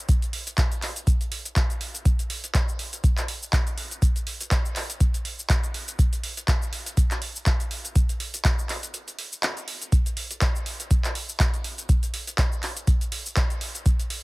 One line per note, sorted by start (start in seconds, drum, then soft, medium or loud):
0.09 kick loud
0.09 closed hi-hat medium
0.09 shaker medium
0.22 closed hi-hat soft
0.22 shaker soft
0.33 open hi-hat loud
0.47 closed hi-hat medium
0.47 shaker medium
0.58 kick loud
0.58 clap loud
0.58 closed hi-hat medium
0.58 shaker medium
0.72 closed hi-hat soft
0.72 shaker soft
0.82 clap soft
0.82 open hi-hat loud
0.96 closed hi-hat medium
0.96 shaker medium
1.07 kick loud
1.07 closed hi-hat medium
1.07 shaker medium
1.21 closed hi-hat soft
1.21 shaker soft
1.32 open hi-hat loud
1.45 closed hi-hat soft
1.45 shaker medium
1.56 kick loud
1.56 clap loud
1.56 closed hi-hat medium
1.56 shaker medium
1.70 closed hi-hat soft
1.70 shaker soft
1.81 open hi-hat loud
1.95 closed hi-hat soft
1.95 shaker medium
2.05 kick loud
2.05 closed hi-hat medium
2.05 shaker medium
2.19 closed hi-hat soft
2.19 shaker soft
2.30 open hi-hat loud
2.44 closed hi-hat medium
2.44 shaker medium
2.55 kick loud
2.55 clap loud
2.55 closed hi-hat medium
2.55 shaker medium
2.69 shaker soft
2.79 open hi-hat loud
2.93 closed hi-hat medium
2.93 shaker medium
3.04 kick loud
3.04 closed hi-hat medium
3.04 shaker medium
3.18 clap soft
3.18 closed hi-hat soft
3.18 shaker soft
3.28 open hi-hat loud
3.43 shaker medium
3.53 kick loud
3.53 clap loud
3.53 closed hi-hat medium
3.53 shaker medium
3.67 closed hi-hat soft
3.67 shaker soft
3.78 open hi-hat loud
3.91 closed hi-hat soft
3.91 shaker medium
4.02 kick loud
4.02 closed hi-hat medium
4.02 shaker medium
4.16 closed hi-hat soft
4.16 shaker soft
4.27 open hi-hat loud
4.41 closed hi-hat medium
4.41 shaker medium
4.51 kick loud
4.51 clap loud
4.51 closed hi-hat medium
4.51 shaker medium
4.65 shaker soft
4.76 clap soft
4.76 open hi-hat loud
4.90 closed hi-hat medium
4.90 shaker medium
5.00 kick loud
5.00 closed hi-hat medium
5.00 shaker medium
5.14 closed hi-hat soft
5.14 shaker soft
5.25 open hi-hat loud
5.39 shaker medium
5.50 kick loud
5.50 clap loud
5.50 closed hi-hat medium
5.50 shaker medium
5.63 closed hi-hat soft
5.63 shaker soft
5.74 open hi-hat loud
5.88 closed hi-hat soft
5.88 shaker medium
5.99 kick loud
5.99 closed hi-hat medium
5.99 shaker medium
6.13 closed hi-hat soft
6.13 shaker soft
6.24 open hi-hat loud
6.37 closed hi-hat medium
6.37 shaker medium
6.48 kick loud
6.48 clap loud
6.48 closed hi-hat medium
6.48 shaker medium
6.62 shaker soft
6.73 open hi-hat loud
6.86 closed hi-hat medium
6.86 shaker medium
6.97 kick loud
6.97 closed hi-hat medium
6.97 shaker medium
7.11 clap soft
7.11 closed hi-hat soft
7.11 shaker soft
7.22 open hi-hat loud
7.36 shaker medium
7.46 kick loud
7.46 clap loud
7.46 closed hi-hat medium
7.46 shaker medium
7.60 closed hi-hat soft
7.60 shaker soft
7.71 open hi-hat loud
7.85 closed hi-hat soft
7.85 shaker medium
7.96 kick loud
7.96 closed hi-hat medium
7.96 shaker medium
8.09 closed hi-hat soft
8.09 shaker soft
8.20 open hi-hat loud
8.34 closed hi-hat medium
8.34 shaker medium
8.45 kick loud
8.45 clap loud
8.45 closed hi-hat medium
8.45 shaker medium
8.59 shaker soft
8.69 clap soft
8.69 open hi-hat loud
8.83 closed hi-hat medium
8.83 shaker medium
8.94 closed hi-hat medium
8.94 shaker medium
9.08 closed hi-hat soft
9.08 shaker soft
9.19 open hi-hat loud
9.33 shaker medium
9.43 clap loud
9.43 closed hi-hat medium
9.43 shaker medium
9.57 closed hi-hat soft
9.57 shaker soft
9.68 open hi-hat loud
9.82 closed hi-hat soft
9.82 shaker medium
9.92 kick loud
9.92 closed hi-hat medium
9.92 shaker medium
10.06 closed hi-hat soft
10.06 shaker soft
10.17 open hi-hat loud
10.31 closed hi-hat medium
10.31 shaker medium
10.41 kick loud
10.41 clap loud
10.41 closed hi-hat medium
10.41 shaker medium
10.56 shaker soft
10.66 open hi-hat loud
10.80 closed hi-hat medium
10.80 shaker medium
10.91 kick loud
10.91 closed hi-hat medium
10.91 shaker medium
11.04 clap soft
11.04 closed hi-hat soft
11.04 shaker soft
11.15 open hi-hat loud
11.29 shaker medium
11.40 kick loud
11.40 clap loud
11.40 closed hi-hat medium
11.40 shaker medium
11.54 closed hi-hat soft
11.54 shaker soft
11.64 open hi-hat loud
11.78 closed hi-hat soft
11.78 shaker medium
11.89 kick loud
11.89 closed hi-hat medium
11.89 shaker medium
12.03 closed hi-hat soft
12.03 shaker soft
12.14 open hi-hat loud
12.27 closed hi-hat medium
12.27 shaker medium
12.38 kick loud
12.38 clap loud
12.38 closed hi-hat medium
12.38 shaker medium
12.52 shaker soft
12.63 clap soft
12.63 open hi-hat loud
12.77 closed hi-hat medium
12.77 shaker medium
12.87 kick loud
12.87 closed hi-hat medium
12.87 shaker medium
13.01 closed hi-hat soft
13.01 shaker soft
13.12 open hi-hat loud
13.26 shaker medium
13.37 kick loud
13.37 clap loud
13.37 closed hi-hat medium
13.37 shaker medium
13.50 closed hi-hat soft
13.50 shaker soft
13.61 open hi-hat loud
13.75 closed hi-hat soft
13.75 shaker medium
13.86 kick loud
13.86 closed hi-hat medium
13.86 shaker medium
14.00 closed hi-hat soft
14.00 shaker soft
14.10 open hi-hat loud